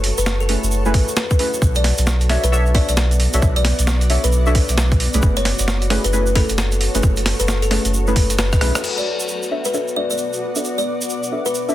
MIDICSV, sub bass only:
0, 0, Header, 1, 2, 480
1, 0, Start_track
1, 0, Tempo, 451128
1, 1723, Time_signature, 4, 2, 24, 8
1, 12501, End_track
2, 0, Start_track
2, 0, Title_t, "Sub bass"
2, 0, Program_c, 0, 38
2, 0, Note_on_c, 0, 30, 90
2, 125, Note_off_c, 0, 30, 0
2, 190, Note_on_c, 0, 30, 78
2, 604, Note_off_c, 0, 30, 0
2, 671, Note_on_c, 0, 30, 90
2, 995, Note_off_c, 0, 30, 0
2, 1001, Note_on_c, 0, 33, 86
2, 1110, Note_off_c, 0, 33, 0
2, 1722, Note_on_c, 0, 35, 93
2, 2045, Note_off_c, 0, 35, 0
2, 2111, Note_on_c, 0, 35, 79
2, 2525, Note_off_c, 0, 35, 0
2, 2591, Note_on_c, 0, 35, 92
2, 3005, Note_off_c, 0, 35, 0
2, 3071, Note_on_c, 0, 35, 89
2, 3485, Note_off_c, 0, 35, 0
2, 3551, Note_on_c, 0, 35, 89
2, 3616, Note_off_c, 0, 35, 0
2, 3643, Note_on_c, 0, 35, 93
2, 3965, Note_off_c, 0, 35, 0
2, 4032, Note_on_c, 0, 35, 79
2, 4445, Note_off_c, 0, 35, 0
2, 4511, Note_on_c, 0, 35, 92
2, 4925, Note_off_c, 0, 35, 0
2, 4990, Note_on_c, 0, 35, 88
2, 5404, Note_off_c, 0, 35, 0
2, 5470, Note_on_c, 0, 35, 91
2, 5536, Note_off_c, 0, 35, 0
2, 5562, Note_on_c, 0, 30, 92
2, 5885, Note_off_c, 0, 30, 0
2, 5951, Note_on_c, 0, 30, 80
2, 6365, Note_off_c, 0, 30, 0
2, 6432, Note_on_c, 0, 30, 92
2, 6845, Note_off_c, 0, 30, 0
2, 6911, Note_on_c, 0, 30, 88
2, 7325, Note_off_c, 0, 30, 0
2, 7391, Note_on_c, 0, 30, 93
2, 7457, Note_off_c, 0, 30, 0
2, 7483, Note_on_c, 0, 30, 96
2, 7806, Note_off_c, 0, 30, 0
2, 7871, Note_on_c, 0, 30, 78
2, 8285, Note_off_c, 0, 30, 0
2, 8350, Note_on_c, 0, 30, 92
2, 8676, Note_off_c, 0, 30, 0
2, 8683, Note_on_c, 0, 30, 90
2, 9122, Note_off_c, 0, 30, 0
2, 9160, Note_on_c, 0, 35, 106
2, 9269, Note_off_c, 0, 35, 0
2, 12501, End_track
0, 0, End_of_file